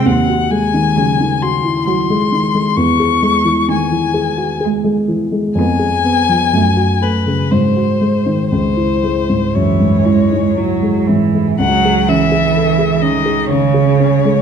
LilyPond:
<<
  \new Staff \with { instrumentName = "Violin" } { \time 3/4 \key cis \minor \tempo 4 = 63 fis''8 gis''4 bis''8 bis''4 | cis'''4 gis''4 r4 | aes''4. b'8 bis'4 | bis'4 cis''4. r8 |
fis''8 e''4 dis''8 cis''4 | }
  \new Staff \with { instrumentName = "Grand piano" } { \clef bass \time 3/4 \key cis \minor dis,16 fis'16 gis16 dis16 cis16 dis16 fis'16 e'16 fis'16 gis16 dis16 gis16 | e,16 gis'16 gis16 e16 dis16 e16 gis'16 fis'16 gis'16 gis16 e16 gis16 | f,16 aes'16 ces'16 f16 fis,16 fis'16 a16 cis16 gis,16 fis'16 gis16 dis16 | cis,16 e'16 gis16 gis,16 fis,16 gis,16 e'16 dis'16 e'16 gis16 gis,16 gis16 |
cis,16 gis'16 cis'16 gis'16 a'16 gis'16 cis'16 gis'16 cis'16 gis'16 cis'16 gis16 | }
  \new Staff \with { instrumentName = "Cello" } { \clef bass \time 3/4 \key cis \minor r4 fis4 fis4 | r4 gis4 gis4 | ces'4 a4 fis4 | r4 e8 gis8 fis8 e8 |
fis8 e4 dis8 cis4 | }
>>